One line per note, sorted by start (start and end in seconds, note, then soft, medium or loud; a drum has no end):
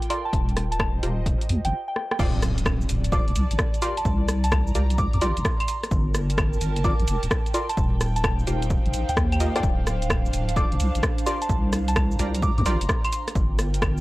0.00 1.73 F4 medium
0.00 1.09 A#4 medium
0.00 1.73 G5 medium
0.00 closed hi-hat medium
0.10 0.24 F4 medium
0.10 0.24 A4 medium
0.10 0.24 A#4 medium
0.10 0.24 D5 loud
0.10 0.22 C6 medium
0.10 open hi-hat loud
0.25 0.39 A5 medium
0.33 0.99 D#1 loud
0.33 kick loud
0.33 closed hi-hat medium
0.49 closed hi-hat soft
0.53 1.73 C5 medium
0.53 cross-stick medium
0.53 open hi-hat loud
0.62 1.73 D#5 medium
0.71 0.77 A5 medium
0.71 closed hi-hat medium
0.80 0.90 A5 medium
0.80 kick loud
0.80 cross-stick loud
0.80 claves medium
1.03 1.35 D#1 medium
1.03 1.48 F4 medium
1.03 1.48 G4 medium
1.03 1.48 A#4 medium
1.03 1.48 C5 medium
1.03 open hi-hat loud
1.26 kick loud
1.26 closed hi-hat medium
1.41 closed hi-hat medium
1.49 1.61 D#2 medium
1.49 open hi-hat loud
1.65 1.73 G1 medium
1.65 1.81 G5 medium
1.65 closed hi-hat medium
1.88 2.08 G5 medium
1.96 cross-stick medium
2.11 2.16 G5 medium
2.11 cross-stick medium
2.19 2.85 D1 loud
2.19 2.89 F4 loud
2.19 2.89 A4 loud
2.19 2.89 C5 medium
2.19 2.89 D5 loud
2.19 kick loud
2.19 crash loud
2.19 impact medium
2.19 shaker soft
2.42 cross-stick medium
2.42 open hi-hat loud
2.42 shaker medium
2.51 6.55 D5 medium
2.58 closed hi-hat medium
2.58 shaker soft
2.66 kick loud
2.66 cross-stick loud
2.66 claves medium
2.66 shaker soft
2.81 shaker soft
2.89 3.21 D1 medium
2.89 3.82 A5 medium
2.89 open hi-hat loud
2.89 shaker medium
3.04 closed hi-hat medium
3.04 shaker soft
3.12 3.26 F4 medium
3.12 3.26 A4 medium
3.12 3.26 C5 medium
3.12 3.26 D5 medium
3.12 3.32 D6 medium
3.12 kick loud
3.12 shaker soft
3.28 3.33 F1 loud
3.28 closed hi-hat soft
3.36 3.47 C2 loud
3.36 open hi-hat loud
3.36 shaker medium
3.51 3.57 A1 medium
3.51 closed hi-hat medium
3.51 shaker soft
3.59 kick loud
3.59 cross-stick loud
3.59 shaker soft
3.74 closed hi-hat soft
3.74 shaker soft
3.82 3.96 F4 medium
3.82 3.96 G4 medium
3.82 3.96 A#4 medium
3.82 3.96 D5 loud
3.82 3.94 C6 medium
3.82 open hi-hat loud
3.82 shaker medium
3.97 4.14 A5 medium
3.97 closed hi-hat medium
3.97 shaker soft
4.05 4.71 C2 loud
4.05 5.68 A#5 loud
4.05 kick loud
4.05 shaker soft
4.29 cross-stick medium
4.29 open hi-hat loud
4.29 shaker medium
4.44 4.60 A5 medium
4.44 closed hi-hat medium
4.44 shaker soft
4.52 kick loud
4.52 cross-stick loud
4.52 claves medium
4.52 shaker soft
4.67 shaker soft
4.75 5.07 C2 medium
4.75 5.20 F4 medium
4.75 5.20 G4 medium
4.75 5.20 A#4 medium
4.75 5.20 D5 medium
4.75 open hi-hat loud
4.75 shaker medium
4.90 closed hi-hat medium
4.90 shaker soft
4.98 5.08 D6 medium
4.98 kick loud
4.98 shaker soft
5.13 5.19 F2 loud
5.13 5.19 D6 medium
5.13 closed hi-hat soft
5.21 5.33 A#1 loud
5.21 5.35 F4 loud
5.21 5.35 G4 medium
5.21 5.35 A#4 medium
5.21 5.35 D5 loud
5.21 5.41 C6 medium
5.21 open hi-hat loud
5.21 shaker medium
5.37 5.43 G1 medium
5.37 closed hi-hat medium
5.37 shaker soft
5.45 kick loud
5.45 cross-stick loud
5.45 shaker soft
5.60 5.65 C6 medium
5.60 closed hi-hat soft
5.60 claves medium
5.60 shaker soft
5.68 5.78 C6 medium
5.68 open hi-hat loud
5.68 shaker medium
5.73 8.52 A#4 medium
5.83 8.43 A5 medium
5.83 cross-stick medium
5.83 closed hi-hat medium
5.83 shaker soft
5.91 6.58 G1 loud
5.91 kick loud
5.91 shaker soft
5.97 10.30 G5 medium
6.15 cross-stick medium
6.15 open hi-hat loud
6.15 shaker medium
6.30 closed hi-hat medium
6.30 shaker soft
6.38 kick loud
6.38 cross-stick loud
6.38 claves medium
6.38 shaker soft
6.53 shaker soft
6.61 6.93 G1 medium
6.61 open hi-hat loud
6.61 shaker medium
6.76 closed hi-hat medium
6.76 shaker soft
6.84 6.98 F4 medium
6.84 6.98 A4 medium
6.84 6.98 A#4 medium
6.84 6.98 D5 loud
6.84 7.04 D6 loud
6.84 kick loud
6.84 shaker soft
7.00 7.05 A#1 loud
7.00 closed hi-hat soft
7.08 7.19 F1 loud
7.08 open hi-hat loud
7.08 shaker medium
7.23 7.29 D1 medium
7.23 closed hi-hat medium
7.23 shaker soft
7.31 kick loud
7.31 cross-stick loud
7.31 shaker soft
7.46 closed hi-hat soft
7.46 shaker soft
7.54 7.68 F4 medium
7.54 7.68 A4 medium
7.54 7.68 A#4 medium
7.54 7.68 D5 medium
7.54 7.66 C6 medium
7.54 open hi-hat loud
7.54 shaker medium
7.69 7.83 A5 loud
7.69 closed hi-hat medium
7.69 shaker soft
7.77 8.44 D#1 loud
7.77 9.63 D#4 loud
7.77 kick loud
7.77 shaker soft
7.86 13.83 C5 medium
7.86 13.99 F5 loud
8.01 cross-stick medium
8.01 open hi-hat loud
8.01 shaker medium
8.16 8.21 A5 medium
8.16 closed hi-hat medium
8.16 shaker soft
8.24 8.34 A5 medium
8.24 kick loud
8.24 cross-stick loud
8.24 claves medium
8.24 shaker soft
8.39 shaker soft
8.47 8.79 D#1 medium
8.47 8.92 F4 medium
8.47 8.92 G4 medium
8.47 8.92 A#4 medium
8.47 8.92 C5 medium
8.47 open hi-hat loud
8.47 shaker medium
8.62 closed hi-hat medium
8.62 shaker soft
8.70 kick loud
8.70 shaker soft
8.86 8.91 G1 loud
8.86 closed hi-hat soft
8.94 9.05 A#1 medium
8.94 open hi-hat loud
8.94 shaker medium
9.09 9.60 D#2 medium
9.09 9.25 G5 medium
9.09 closed hi-hat medium
9.09 shaker soft
9.17 kick loud
9.17 cross-stick loud
9.17 shaker soft
9.32 9.52 G5 medium
9.32 closed hi-hat soft
9.32 claves medium
9.32 shaker soft
9.40 9.53 F4 medium
9.40 9.53 G4 medium
9.40 9.53 A#4 medium
9.40 9.53 D#5 medium
9.40 open hi-hat loud
9.40 shaker medium
9.55 10.55 F4 medium
9.55 10.55 A4 medium
9.55 10.55 C5 medium
9.55 10.55 D5 loud
9.55 9.61 G5 medium
9.55 cross-stick medium
9.55 closed hi-hat medium
9.55 shaker soft
9.63 10.30 D1 loud
9.63 13.80 D4 medium
9.63 9.73 G5 medium
9.63 kick loud
9.63 shaker soft
9.87 cross-stick medium
9.87 open hi-hat loud
9.87 shaker medium
10.02 closed hi-hat medium
10.02 shaker soft
10.10 kick loud
10.10 cross-stick loud
10.10 claves medium
10.10 shaker soft
10.25 11.26 A5 medium
10.25 shaker soft
10.33 10.65 D1 medium
10.33 open hi-hat loud
10.33 shaker medium
10.49 closed hi-hat medium
10.49 shaker soft
10.56 10.70 F4 medium
10.56 10.70 A4 medium
10.56 10.70 C5 medium
10.56 10.70 D5 loud
10.56 10.76 D6 loud
10.56 kick loud
10.56 shaker soft
10.72 10.78 F1 loud
10.72 closed hi-hat soft
10.80 10.91 C2 loud
10.80 open hi-hat loud
10.80 shaker medium
10.95 11.01 A1 medium
10.95 closed hi-hat medium
10.95 shaker soft
11.03 kick loud
11.03 cross-stick loud
11.03 shaker soft
11.18 closed hi-hat soft
11.18 shaker soft
11.26 11.40 F4 medium
11.26 11.40 G4 medium
11.26 11.40 A#4 medium
11.26 11.40 D5 loud
11.26 11.38 C6 medium
11.26 open hi-hat loud
11.26 shaker medium
11.42 11.58 A5 loud
11.42 closed hi-hat medium
11.42 shaker soft
11.49 12.16 C2 loud
11.49 13.12 A#5 medium
11.49 kick loud
11.49 shaker soft
11.73 cross-stick medium
11.73 open hi-hat loud
11.73 shaker medium
11.88 12.04 A5 medium
11.88 closed hi-hat medium
11.88 shaker soft
11.96 kick loud
11.96 cross-stick loud
11.96 claves medium
11.96 shaker soft
12.11 shaker soft
12.19 12.51 C2 medium
12.19 12.64 F4 medium
12.19 12.64 G4 medium
12.19 12.64 A#4 medium
12.19 12.64 D5 medium
12.19 open hi-hat loud
12.19 shaker medium
12.35 closed hi-hat medium
12.35 shaker soft
12.42 12.52 D6 medium
12.42 kick loud
12.42 shaker soft
12.58 12.64 F2 loud
12.58 12.63 D6 medium
12.58 closed hi-hat soft
12.66 12.77 A#1 loud
12.66 12.80 F4 loud
12.66 12.80 G4 medium
12.66 12.80 A#4 medium
12.66 12.80 D5 loud
12.66 12.85 C6 medium
12.66 open hi-hat loud
12.66 shaker medium
12.81 12.87 G1 loud
12.81 closed hi-hat medium
12.81 shaker soft
12.89 kick loud
12.89 cross-stick loud
12.89 shaker soft
13.05 13.10 C6 medium
13.05 closed hi-hat medium
13.05 claves medium
13.05 shaker soft
13.12 14.01 F4 loud
13.12 13.22 C6 medium
13.12 open hi-hat loud
13.12 shaker medium
13.24 14.01 G5 medium
13.24 cross-stick soft
13.24 closed hi-hat medium
13.24 shaker soft
13.35 14.01 G1 loud
13.35 14.01 A#4 medium
13.35 kick loud
13.35 shaker soft
13.59 cross-stick medium
13.59 open hi-hat loud
13.59 shaker medium
13.63 14.01 A5 medium
13.74 closed hi-hat medium
13.74 shaker soft
13.82 kick loud
13.82 cross-stick loud
13.82 claves medium
13.82 shaker soft
13.97 shaker soft